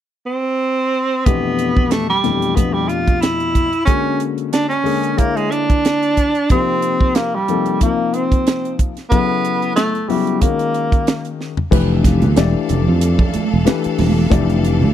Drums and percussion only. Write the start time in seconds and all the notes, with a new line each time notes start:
1.26 kick, closed hi-hat
1.59 closed hi-hat
1.77 kick
1.91 snare, closed hi-hat
2.24 snare, closed hi-hat
2.42 closed hi-hat
2.57 kick, closed hi-hat
2.89 closed hi-hat
3.08 kick, closed hi-hat
3.22 snare, closed hi-hat
3.40 closed hi-hat
3.55 kick, closed hi-hat
3.73 closed hi-hat
3.87 kick, closed hi-hat
4.20 closed hi-hat
4.38 closed hi-hat
4.53 snare, closed hi-hat
4.71 closed hi-hat
4.86 open hi-hat
5.03 closed hi-hat
5.18 kick, closed hi-hat
5.37 closed hi-hat
5.52 closed hi-hat
5.70 kick, closed hi-hat
5.85 snare, closed hi-hat
6.03 closed hi-hat
6.17 kick, closed hi-hat
6.35 closed hi-hat
6.50 kick, closed hi-hat
6.82 closed hi-hat
7.00 kick
7.15 snare, closed hi-hat
7.48 closed hi-hat
7.66 closed hi-hat
7.81 kick, closed hi-hat
8.14 closed hi-hat
8.32 kick, closed hi-hat
8.47 snare, closed hi-hat
8.65 closed hi-hat
8.79 kick, closed hi-hat
8.97 snare, closed hi-hat
9.12 kick, closed hi-hat
9.45 closed hi-hat
9.62 closed hi-hat
9.77 snare, closed hi-hat
9.95 closed hi-hat
10.10 open hi-hat
10.27 closed hi-hat
10.41 kick, closed hi-hat
10.59 closed hi-hat
10.74 closed hi-hat
10.92 kick, closed hi-hat
11.07 snare, closed hi-hat
11.25 closed hi-hat
11.41 snare
11.57 floor tom
11.72 kick, crash
12.04 kick, snare, closed hi-hat
12.22 closed hi-hat, high conga
12.37 snare, closed hi-hat
12.69 closed hi-hat, low conga
13.01 closed hi-hat
13.19 kick, low conga
13.34 closed hi-hat, high conga
13.67 snare, closed hi-hat
13.84 closed hi-hat
13.99 open hi-hat, high conga, low conga
14.32 kick, closed hi-hat
14.50 closed hi-hat
14.64 closed hi-hat
14.82 high conga